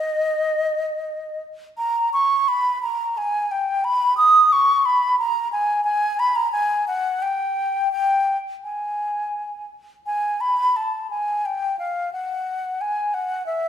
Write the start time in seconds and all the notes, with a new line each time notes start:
Already playing: D#5
1.78 A#5
2.13 C#6
2.48 B5
2.83 A#5
3.17 G#5
3.51 G5
3.84 B5
4.17 D#6
4.53 C#6
4.86 B5
5.19 A#5
5.52 G#5
5.84 G#5
6.19 B5
6.36 A#5
6.52 G#5
6.88 F#5
7.22 G5
7.92 G5
8.64 G#5
10.06 G#5
10.41 B5
10.76 A5
11.10 G#5
11.45 G5
11.79 F5
12.13 F#5
12.81 G#5
13.14 F#5
13.46 E5